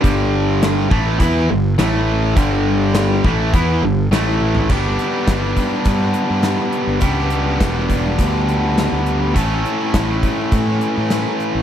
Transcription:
<<
  \new Staff \with { instrumentName = "Distorted electric guitar" } { \clef bass \time 4/4 \key g \lydian \tempo 4 = 103 <g, d g>4. <a, e a>8 <e b e'>8 <g, d>8 <a, e a>4 | <g, d g>4. <a, e a>8 <e b e'>8 <g, d>8 <a, e a>4 | <g b d' g'>1 | <g b d' g'>1 |
<a, e a cis' a'>1 | }
  \new Staff \with { instrumentName = "Fingered electric bass" } { \clef bass \time 4/4 \key g \lydian g,,4. a,,8 e,8 g,,8 a,,4 | g,,4. a,,8 e,8 g,,8 a,,4 | g,,8 r8 g,,8 r8 g,8 r16 g,8 r8 g,,16 | cis,4 e,,4 d,4~ d,16 d,8. |
a,,8 r8 a,,8 r8 a,8 r16 a,8 r8 a,,16 | }
  \new DrumStaff \with { instrumentName = "Drums" } \drummode { \time 4/4 <hh bd>4 <hh sn>8 bd8 <hh bd>4 <hh sn>4 | <hh bd>4 <hh sn>8 bd8 <hh bd>4 <hh sn>8 tommh16 tomfh16 | <cymc bd>8 <hh sn>8 <hh bd sn>8 <hh bd>8 <hh bd>8 hh8 <hh sn>8 hh8 | <hh bd>8 hh8 <hh bd sn>8 <hh bd>8 <hh bd>8 hh8 <hh sn>8 hh8 |
<hh bd>8 hh8 <hh bd sn>8 <hh bd>8 <hh bd>8 hh8 <hh sn>8 hh8 | }
>>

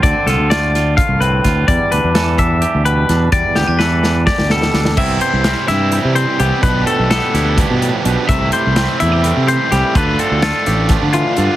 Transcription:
<<
  \new Staff \with { instrumentName = "Clean electric guitar" } { \time 7/8 \key c \major \tempo 4 = 127 d''8 a'8 d''4 f''8 b'4 | d''8 b'4 e''4 b'4 | d''8 g'8 b'4 d''8 a'4 | e''8 c''4 e''4 c''8 g'8 |
b'8 a'8 a'4 r4. | e''8 c''4 e''4 c''8 g'8 | b'8 a'8 a'4 r8 f'4 | }
  \new Staff \with { instrumentName = "Clean electric guitar" } { \time 7/8 \key c \major << { c'8 f'8 f'8 f'8 f'8 c'8 f'8 | g8 d'8 a'8 d'8 g'8 g8 d'8 | g8 b16 d'16 a'8 d'8 g'8 g8 d'8 | <e b c' e'>4 c'8 e'4 c'8 b8 |
r8 a8 b8 e'2~ | e'8 g8 c'8 e'16 g'16 g8 c'8 g8 | r8 c'8 f'8 g'2 | } \\ { d4 a4. a,4 | e,4 e4. b,4 | e,4 e4. b,4 | c2.~ c8 |
b,2 g,8 a,8 b,8 | c2.~ c8 | d2 f8 e8 d8 | } >> }
  \new Staff \with { instrumentName = "Overdriven electric guitar" } { \time 7/8 \key c \major r2. r8 | r2. r8 | r2. r8 | <c e g c' g'>4 <e g c' g'>8 <g c' g'>8 <e g c' g'>4 <c e g c' g'>8 |
<b, f b d' g'>4 <f b d' g'>8 <b d' g'>8 <f b d' g'>4 <b, f b d' g'>8 | <c e a c' e'>4 <e a c' e'>8 <a c' e'>8 <e a c' e'>4 <c e a c' e'>8 | <d a d' f'>4 <d a d' f'>8 <a d' f'>8 <d a d' f'>4 <d a d' f'>8 | }
  \new Staff \with { instrumentName = "Fingered electric bass" } { \clef bass \time 7/8 \key c \major d,16 r16 c,16 d,4. c,8. d,8 | e,16 r16 d,16 e,4. d,8. e,8 | r8 d,16 e,4. d,8. d,8 | c,8 r16 c,8 r16 g,8. c8 r16 c,16 r16 |
b,,8 r16 b,,8 r16 d,8. b,8 r16 b,,16 r16 | c,8 r16 c,8 r16 e,8. c8 r16 c,16 r16 | d,8 r16 d,8 r16 a,,8. d8 r16 g,16 r16 | }
  \new DrumStaff \with { instrumentName = "Drums" } \drummode { \time 7/8 <hh bd>8 <hh sn>8 <hh sn>8 <hh sn>8 <hh bd>8 hh8 <hh bd sn>8 | <hh bd>8 hh8 <hh sn>8 <hh bd>8 hh8 hh8 <hh sn>8 | <hh bd>8 sn8 sn8 sn8 <bd sn>16 sn16 sn16 sn16 sn16 sn16 | <cymc bd>8 hh8 <hh sn>8 <hh sn>8 hh8 hh8 hh8 |
<hh bd>8 hh8 <hh sn>8 <hh sn>8 <hh bd>8 hh8 hh8 | <hh bd>8 hh8 <hh sn>8 hh8 hh8 hh8 <hh sn>8 | <hh bd>8 hh8 <hh sn>8 <hh sn>8 <hh bd sn>8 hh8 hh8 | }
>>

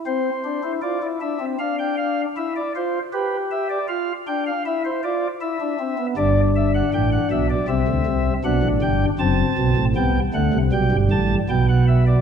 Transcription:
<<
  \new Staff \with { instrumentName = "Pipe organ" } { \time 4/4 \key c \major \tempo 4 = 79 << { c''4 d''8 e''8 f''16 g''16 f''8 e''16 d''16 c''8 | b'8 e''16 d''16 f''8 g''16 f''16 e''16 c''16 d''8 e''4 | d''8 e''16 fis''16 g''16 fis''16 e''16 d''16 e''4 fis''8 g''8 | a''4 g''8 fis''8 g''8 a''8 g''16 fis''16 e''16 d''16 | } \\ { c'8 d'16 e'16 f'16 e'16 d'16 c'16 d'4 e'8 f'8 | g'4 f'8 d'8 e'8 f'8 e'16 d'16 c'16 b16 | d'2 c'4 d'4 | c'4 b8 a8 g4 b4 | } >> }
  \new Staff \with { instrumentName = "Pipe organ" } { \clef bass \time 4/4 \key c \major r1 | r1 | <g,, g,>4 <a,, a,>8 <b,, b,>8 <c, c>16 <d, d>16 <c, c>8 <b,, b,>16 <a,, a,>16 <g,, g,>8 | <fis,, fis,>8 <b,, b,>16 <a,, a,>16 <c, c>8 <d, d>16 <c, c>16 <b,, b,>16 <g,, g,>16 <a,, a,>8 <b,, b,>4 | }
>>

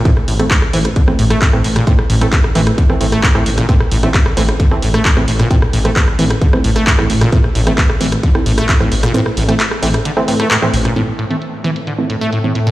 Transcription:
<<
  \new Staff \with { instrumentName = "Synth stab" } { \time 4/4 \key a \phrygian \tempo 4 = 132 <e a c'>16 r8 <e a c'>16 r8 <e a c'>16 r8 <e a c'>16 r8. <e a c'>16 r8 | <e a c'>16 r8 <e a c'>16 r8 <e a c'>16 r8 <e a c'>16 <e a c'>16 r8 <e a c'>16 r8 | <e a c'>16 r8 <e a c'>16 r8 <e a c'>16 r8 <e a c'>16 r8. <e a c'>16 r8 | <e a c'>16 r8 <e a c'>16 r8 <e a c'>16 r8 <e a c'>16 r8. <e a c'>16 r8 |
<e a c'>16 r8 <e a c'>16 r8 <e a c'>16 r8 <e a c'>16 r8. <e a c'>16 r8 | <e a c'>16 r8 <e a c'>16 r8 <e a c'>16 r8 <e a c'>16 <e a c'>16 r8 <e a c'>16 r8 | <e a c'>16 r8 <e a c'>16 r8 <e a c'>16 r8 <e a c'>16 r8. <e a c'>16 r8 | }
  \new Staff \with { instrumentName = "Synth drone" } { \clef bass \time 4/4 \key a \phrygian r1 | r1 | r1 | r1 |
r1 | r1 | <a, a>1 | }
  \new Staff \with { instrumentName = "Acid bass" } { \clef bass \time 4/4 \key a \phrygian a,16 r16 a,16 a16 r8 e16 r16 d16 r16 a,16 a16 a,16 a,16 a,16 bes,16 | a,16 r16 a,16 a16 r8 e16 r16 d16 r16 a,16 a16 a,16 a,16 a,16 bes,16 | a,16 r16 a,16 a16 r8 e16 r16 d16 r16 a,16 a16 a,16 a,16 a,16 bes,16 | a,16 r16 a,16 a16 r8 e16 r16 d16 r16 a,16 a16 a,16 a,16 a,16 bes,16 |
a,16 r16 a,16 a16 r8 e16 r16 d16 r16 a,16 a16 a,16 a,16 a,16 bes,16 | a,16 r16 a,16 a16 r8 e16 r16 d16 r16 a,16 a16 a,16 a,16 a,16 bes,16 | a,16 r16 a,16 a16 r8 e16 r16 d16 r16 a,16 a16 a,16 a,16 a,16 bes,16 | }
  \new Staff \with { instrumentName = "Detuned saw bass" } { \clef bass \time 4/4 \key a \phrygian r8 a,,8 r8 a,,8 r8 a,,8 r8 a,,8 | r8 a,,8 r8 a,,8 r8 a,,8 r8 a,,8 | r8 a,,8 r8 a,,8 r8 a,,8 r8 a,,8 | r8 a,,8 r8 a,,8 r8 a,,8 r8 a,,8 |
r8 a,,8 r8 a,,8 r8 a,,8 r8 a,,8 | r8 a,,8 r8 a,,8 r8 a,8 r8 a,,8 | r1 | }
  \new DrumStaff \with { instrumentName = "Drums" } \drummode { \time 4/4 <hh bd>16 ss16 hho16 <hh ss>16 <hc hh bd>16 ss16 hho16 <hh ss>16 <hh bd>16 ss16 hho16 <hh ss>16 <hc hh bd>16 ss16 hho16 <hh ss>16 | <hh bd>16 ss16 hho16 <hh ss>16 <hc hh bd>16 ss16 hho16 <hh ss>16 <hh bd>16 ss16 hho16 <hh ss>16 <hc hh bd>16 ss16 hho16 <hh ss>16 | <hh bd>16 ss16 hho16 <hh ss>16 <hc hh bd>16 ss16 hho16 <hh ss>16 <hh bd>16 ss16 hho16 <hh ss>16 <hc hh bd>16 ss16 hho16 <hh ss>16 | <hh bd>16 ss16 hho16 <hh ss>16 <hc hh bd>16 ss16 hho16 <hh ss>16 <hh bd>16 ss16 hho16 <hh ss>16 <hc hh bd>16 ss16 hho16 <hh ss>16 |
<hh bd>16 ss16 hho16 <hh ss>16 <hc hh bd>16 ss16 hho16 <hh ss>16 <hh bd>16 ss16 hho16 <hh ss>16 <hc hh bd>16 ss16 hho16 <hh ss>16 | hh16 ss16 hho16 <hh ss>16 <hc hh>16 ss16 hho16 <hh ss>16 hh16 ss16 hho16 <hh ss>16 <hc hh>16 ss16 hho16 <hh ss>16 | hh8 hh16 hh16 hh8 hh16 hh16 hh8 hh16 hh16 hh8 hh16 hh16 | }
>>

